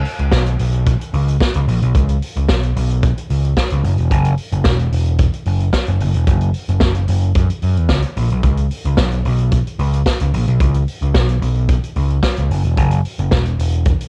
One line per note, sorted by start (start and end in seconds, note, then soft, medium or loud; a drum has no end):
0.05 open hi-hat soft
0.19 0.30 C#2 medium
0.19 closed hi-hat soft
0.31 0.54 B1 medium
0.31 kick loud
0.31 snare loud
0.46 closed hi-hat soft
0.59 0.93 B1 medium
0.59 open hi-hat medium
0.72 closed hi-hat soft
0.86 kick loud
0.86 closed hi-hat medium
1.01 closed hi-hat soft
1.13 1.35 C#2 medium
1.13 open hi-hat soft
1.28 closed hi-hat soft
1.40 kick loud
1.40 snare loud
1.54 1.65 C#2 medium
1.54 closed hi-hat soft
1.68 1.79 A#1 loud
1.68 open hi-hat medium
1.82 1.92 B1 medium
1.82 closed hi-hat soft
1.95 2.17 C#2 medium
1.95 kick loud
1.95 closed hi-hat medium
2.09 closed hi-hat soft
2.22 open hi-hat medium
2.37 2.49 C#2 medium
2.37 closed hi-hat soft
2.49 2.71 B1 medium
2.49 kick loud
2.49 snare loud
2.63 closed hi-hat soft
2.76 3.09 B1 loud
2.76 open hi-hat medium
2.90 closed hi-hat soft
3.03 kick loud
3.03 closed hi-hat medium
3.17 closed hi-hat soft
3.30 3.52 C#2 medium
3.30 open hi-hat medium
3.45 closed hi-hat soft
3.57 kick loud
3.57 snare loud
3.70 3.82 C#2 loud
3.70 closed hi-hat medium
3.84 3.95 F#1 loud
3.84 open hi-hat medium
3.98 4.11 E1 medium
3.98 closed hi-hat soft
4.11 4.33 F#1 loud
4.11 kick loud
4.11 closed hi-hat medium
4.25 closed hi-hat soft
4.38 open hi-hat medium
4.52 4.66 F#1 medium
4.52 closed hi-hat medium
4.64 4.87 E1 medium
4.64 kick loud
4.64 snare medium
4.79 closed hi-hat soft
4.92 5.26 E1 medium
4.92 open hi-hat medium
5.06 closed hi-hat soft
5.18 kick loud
5.18 closed hi-hat medium
5.33 closed hi-hat soft
5.46 5.68 F#1 medium
5.46 open hi-hat soft
5.60 closed hi-hat soft
5.73 kick medium
5.73 snare loud
5.87 5.98 F#1 medium
5.87 closed hi-hat soft
6.00 6.12 F#1 loud
6.00 open hi-hat medium
6.14 6.25 E1 medium
6.14 closed hi-hat soft
6.27 6.49 F#1 loud
6.27 kick loud
6.27 closed hi-hat medium
6.41 closed hi-hat soft
6.54 open hi-hat medium
6.69 6.79 F#1 loud
6.69 closed hi-hat medium
6.80 7.03 F#1 medium
6.80 kick loud
6.80 snare loud
6.95 closed hi-hat soft
7.08 7.31 F#1 medium
7.08 open hi-hat medium
7.22 closed hi-hat soft
7.35 7.47 F#2 medium
7.35 kick loud
7.35 closed hi-hat medium
7.50 closed hi-hat soft
7.62 7.78 F#2 medium
7.62 open hi-hat medium
7.77 7.88 E2 medium
7.77 closed hi-hat soft
7.89 8.01 C#2 medium
7.89 kick loud
7.89 snare loud
8.02 closed hi-hat soft
8.17 8.28 A#1 medium
8.17 open hi-hat medium
8.30 8.42 B1 medium
8.30 closed hi-hat soft
8.43 8.65 C#2 medium
8.43 kick loud
8.43 closed hi-hat medium
8.57 closed hi-hat soft
8.71 open hi-hat medium
8.85 8.96 C#2 medium
8.85 closed hi-hat soft
8.97 9.20 B1 medium
8.97 kick loud
8.97 snare loud
9.11 closed hi-hat soft
9.25 9.58 B1 medium
9.25 open hi-hat medium
9.38 closed hi-hat soft
9.51 kick loud
9.51 closed hi-hat medium
9.67 closed hi-hat soft
9.79 10.01 C#2 loud
9.79 open hi-hat medium
9.93 closed hi-hat soft
10.06 kick medium
10.06 snare loud
10.20 10.31 C#2 medium
10.20 closed hi-hat medium
10.34 10.45 A#1 loud
10.34 open hi-hat medium
10.48 10.58 B1 medium
10.48 closed hi-hat soft
10.60 10.82 C#2 loud
10.60 kick loud
10.60 closed hi-hat medium
10.74 closed hi-hat soft
10.88 open hi-hat medium
11.02 11.15 C#2 medium
11.02 closed hi-hat soft
11.14 11.37 B1 medium
11.14 kick loud
11.14 snare loud
11.29 closed hi-hat soft
11.42 11.75 B1 medium
11.42 open hi-hat medium
11.55 closed hi-hat soft
11.68 kick loud
11.68 closed hi-hat medium
11.83 closed hi-hat medium
11.96 12.18 C#2 medium
11.96 open hi-hat soft
12.10 closed hi-hat soft
12.23 kick loud
12.23 snare loud
12.36 12.48 C#2 medium
12.36 closed hi-hat soft
12.51 12.62 F#1 loud
12.51 open hi-hat medium
12.64 12.78 E1 medium
12.64 closed hi-hat soft
12.77 12.99 F#1 loud
12.77 kick loud
12.77 closed hi-hat medium
12.91 closed hi-hat soft
13.05 open hi-hat medium
13.19 13.32 F#1 medium
13.19 closed hi-hat soft
13.31 13.54 E1 medium
13.31 kick loud
13.31 snare loud
13.46 closed hi-hat soft
13.59 13.92 E1 medium
13.59 open hi-hat medium
13.72 closed hi-hat soft
13.85 kick loud
13.85 closed hi-hat medium
14.01 closed hi-hat medium